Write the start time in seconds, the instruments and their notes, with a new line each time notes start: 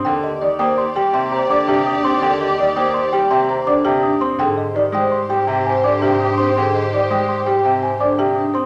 Already playing: grand piano C4, vibraphone D#4, marimba C5, celesta C6
0.04 double bass section D#2, grand piano D3, clarinet G4, string section G4 D5, vibraphone A#4, marimba G5
0.23 clarinet G4, vibraphone G4, celesta D#5
0.42 grand piano D#3, vibraphone D#4, clarinet G4, marimba D5
0.59 grand piano A#3, clarinet G4, vibraphone C5, marimba G5, celesta D#6
0.77 vibraphone D#4, clarinet G4, celesta C6
0.95 grand piano G3, vibraphone G4, clarinet G4, marimba G4, celesta G5
1.13 grand piano C3, vibraphone C4, clarinet G4, marimba G5, celesta C6
1.31 clarinet G4, vibraphone C5, celesta A#5
1.49 grand piano D3, vibraphone D4, clarinet G4, marimba D5, celesta D6
1.67 grand piano C3, vibraphone D#4, clarinet G4, marimba G4, celesta G5
1.86 vibraphone D4, clarinet G4, celesta D#6
2.03 grand piano C4, vibraphone D#4, clarinet G4, marimba C5, celesta C6
2.22 grand piano D3, clarinet G4, vibraphone A#4, marimba G5
2.40 clarinet G4, vibraphone G4, celesta D#5
2.58 grand piano D#3, vibraphone D#4, clarinet G4, marimba D5
2.76 grand piano A#3, clarinet G4, vibraphone C5, marimba G5, celesta D#6
2.94 vibraphone D#4, clarinet G4, celesta C6
3.13 grand piano G3, vibraphone G4, marimba G4, clarinet G4, celesta G5
3.30 grand piano C3, vibraphone C4, clarinet G4, marimba G5, celesta C6
3.49 clarinet G4, vibraphone C5, celesta A#5
3.67 grand piano D3, vibraphone D4, clarinet G4, marimba D5, celesta D6
3.85 grand piano C3, vibraphone D#4, marimba G4, clarinet G4, celesta G5
4.03 vibraphone D4, clarinet G4, celesta D#6
4.20 grand piano C4, vibraphone D#4, marimba C5, celesta C6
4.39 double bass section G#2, grand piano D3, clarinet G4, string section G4 C5, vibraphone G#4, marimba G5
4.57 clarinet G4, vibraphone G4, celesta D#5
4.75 grand piano D#3, vibraphone D#4, clarinet G4, marimba D5
4.92 grand piano G#3, clarinet G4, vibraphone C5, marimba G5, celesta D#6
5.12 vibraphone D#4, clarinet G4, celesta C6
5.29 grand piano G3, marimba G4, vibraphone G4, clarinet G4, celesta G5
5.47 grand piano C3, vibraphone C4, clarinet G4, marimba G5
5.66 clarinet G4, vibraphone C5, celesta G#5
5.84 grand piano D3, vibraphone D4, clarinet G4, marimba D5, celesta D6
6.01 grand piano C3, vibraphone D#4, marimba G4, clarinet G4, celesta G5
6.20 clarinet G4, celesta D#6
6.38 grand piano C4, vibraphone D#4, clarinet G4, marimba C5, celesta C6
6.56 grand piano D3, clarinet G4, vibraphone G#4, marimba G5
6.74 vibraphone G4, clarinet G4, celesta D#5
6.92 grand piano D#3, vibraphone D#4, clarinet G4, marimba D5
7.10 grand piano G#3, clarinet G4, vibraphone C5, marimba G5, celesta D#6
7.28 vibraphone D#4, clarinet G4, celesta C6
7.46 grand piano G3, clarinet G4, vibraphone G4, marimba G4, celesta G5
7.64 grand piano C3, vibraphone C4, clarinet G4, marimba G5
7.82 clarinet G4, vibraphone C5, celesta G#5
7.99 grand piano D3, vibraphone D4, clarinet G4, marimba D5, celesta D6
8.18 grand piano C3, vibraphone D#4, clarinet G4, marimba G4, celesta G5
8.36 vibraphone D4, clarinet G4, celesta D#6
8.54 grand piano C4, vibraphone D#4, marimba C5, celesta C6